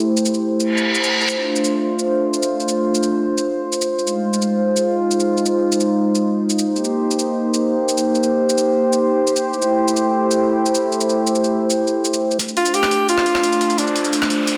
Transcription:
Already playing: A3 E4 G4 C5
0.17 shaker
0.25 shaker
0.34 shaker
0.60 reverse cymbal, shaker
0.77 shaker
0.95 shaker
1.04 shaker
1.21 shaker
1.29 A3 D4 F4, shaker
1.56 shaker
1.64 shaker
1.99 shaker
2.34 shaker
2.43 shaker
2.60 shaker
2.68 shaker
2.95 shaker
3.03 shaker
3.38 shaker
3.72 shaker
3.81 shaker
3.90 G#3 D#4 F4
3.99 shaker
4.07 shaker
4.33 shaker
4.42 shaker
4.76 shaker
5.11 shaker
5.20 shaker
5.37 shaker
5.46 shaker
5.72 shaker
5.80 shaker
6.15 shaker
6.50 shaker
6.59 shaker
6.67 A#3 G4 C5
6.76 shaker
6.85 shaker
7.11 shaker
7.19 shaker
7.54 shaker
7.89 shaker
7.98 shaker
8.15 shaker
8.23 shaker
8.49 shaker
8.58 shaker
8.93 shaker
9.27 shaker
9.36 shaker
9.45 A3 E4
9.53 shaker
9.62 shaker
9.88 shaker
9.97 shaker
10.31 shaker
10.66 shaker
10.75 shaker
10.92 shaker
11.01 shaker
11.09 shaker
11.27 shaker
11.35 shaker
11.44 shaker
11.70 shaker
11.87 shaker
12.05 shaker
12.14 shaker
12.31 shaker
12.39 A3 D4 F4 C5, closed hi-hat, riser, shaker
12.48 shaker
12.57 F4, closed hi-hat
12.65 closed hi-hat, shaker
12.74 G4, closed hi-hat, shaker
12.83 cross-stick, shaker
12.91 closed hi-hat
13.09 F4, closed hi-hat, shaker
13.18 cross-stick
13.26 closed hi-hat
13.35 cross-stick
13.43 closed hi-hat, shaker
13.52 closed hi-hat, shaker
13.61 closed hi-hat
13.70 closed hi-hat, shaker
13.78 D4, closed hi-hat, shaker
13.87 shaker
13.96 closed hi-hat
14.05 closed hi-hat, shaker
14.13 closed hi-hat, shaker
14.22 cross-stick, shaker
14.30 closed hi-hat
14.47 closed hi-hat, shaker

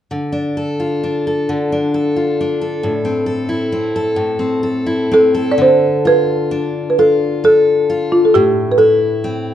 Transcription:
0.11 D3
0.32 D4
0.57 A4
0.80 F4
1.04 D4
1.27 A4
1.49 D3
1.72 D4
1.94 A4
2.16 F4
2.41 D4
2.61 A4
2.83 A2
3.05 C4
3.26 A4
3.49 E4
3.72 C4
3.96 A4
4.16 A2
4.39 C4
4.63 A4
4.86 E4
5.11 C4 A4
5.35 A4
5.52 D5
5.58 D3
5.62 C5
6.05 F4 B4
6.51 D4
6.90 B4
6.99 F4 A4
7.44 A4
7.90 F4
8.12 F4
8.25 A4
8.34 A2 G4
8.72 B4
8.78 E4 A4
9.24 C4

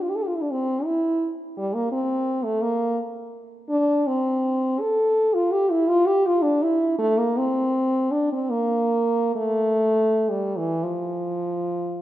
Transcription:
0.02 F4
0.09 G4
0.16 A4
0.23 G4
0.27 F4
0.35 E4
0.41 D4
0.51 C4
0.85 E4
1.57 G3
1.74 A#3
1.92 C4
2.44 A3
2.62 A#3
3.69 D4
4.07 C4
4.80 A4
5.34 F4
5.52 G4
5.70 E4
5.88 F4
6.06 G4
6.27 F4
6.42 D4
6.63 E4
6.98 A3
7.18 A#3
7.37 C4
8.11 D4
8.32 C4
8.50 A#3
9.35 A3
10.30 G3
10.57 E3
10.83 F3

